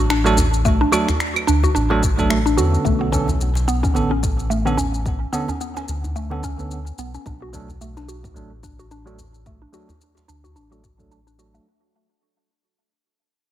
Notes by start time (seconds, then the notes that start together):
Already playing: A1
0.10 D4, finger snap, shaker
0.24 F#3 A3 D4 F#4 A4, shaker
0.37 djembe slap, djembe bass, shaker
0.54 shaker
0.65 A3, kick, shaker
0.81 D4
0.92 F#3 A3 D4 F#4 A4, djembe tone, claves, shaker
1.09 finger snap, djembe bass, shaker
1.20 finger snap, shaker
1.35 djembe slap, djembe tone, claves, shaker
1.47 D2 D4, shaker
1.63 F#4, djembe bass, shaker
1.75 A1 D4, shaker
1.90 F#3 A3 D4 F#4 A4, djembe slap
2.03 kick, shaker
2.18 F#3 A3 D4 A4, kick, djembe tone, shaker
2.30 A3, finger snap, shaker
2.46 D4, shaker
2.57 E2 D3 B3 C#4 F#4 A4, shaker
2.74 shaker
2.85 B1 A3, kick, shaker
3.01 B3
3.12 D3 B3 C#4 A4, kick, djembe tone, shaker
3.28 djembe bass, shaker
3.41 shaker
3.55 djembe slap, shaker
3.68 B3, shaker
3.83 C#4, kick, djembe bass, shaker
3.94 A1 D3 B3 C#4 A4, djembe slap, shaker
4.11 C#4
4.23 kick, shaker
4.39 shaker
4.50 A3, shaker
4.65 D3 B3 C#4 A4, shaker
4.77 C#4, djembe slap, djembe bass, shaker
4.94 shaker
5.06 kick, shaker
5.32 D3 B3 C#4 A4, djembe tone, shaker
5.48 C#4, djembe bass, shaker
5.61 B3, shaker
5.76 C#4, djembe slap, djembe tone, shaker
5.88 D2, shaker
6.04 djembe bass, shaker
6.16 A3, shaker
6.30 D3 B3 C#4 A4, djembe slap
6.43 C#4, kick, shaker
6.58 D3 B3 C#4 A4, djembe tone, shaker
6.71 shaker
6.87 shaker
6.98 B1 B3, shaker
7.14 C#4, shaker
7.26 B1 D4, kick, shaker
7.42 F#4
7.53 F#3 A3 D4 A4, kick, djembe tone, shaker
7.68 djembe bass, shaker
7.81 A3, shaker
7.97 D4, djembe slap, shaker
8.08 F#4, shaker
8.24 kick, djembe bass, shaker
8.34 A1 F#3 A3 D4 A4, djembe slap, shaker
8.63 D4, kick, shaker
8.79 F#4, shaker
8.91 D4, shaker
9.05 F#3 A3 D4 F#4 A4, shaker
9.19 djembe slap, djembe bass, shaker
9.34 shaker
9.46 A3, kick, shaker
9.62 D4
9.72 F#3 A3 D4 F#4 A4, djembe tone, shaker
9.89 djembe bass, shaker
10.01 shaker
10.17 djembe slap, djembe tone, shaker
10.28 D2 D4, shaker
10.44 F#4, djembe bass, shaker
10.55 A1 D4, djembe tone, shaker
10.71 F#3 A3 D4 F#4 A4, djembe slap, shaker
10.84 kick, shaker
10.98 F#3 A3 D4 A4, kick, djembe tone, shaker
11.11 D4, shaker
11.27 D4, shaker
11.38 F#3 A3 D4 F#4 A4, djembe slap, shaker
11.54 A3, djembe tone, shaker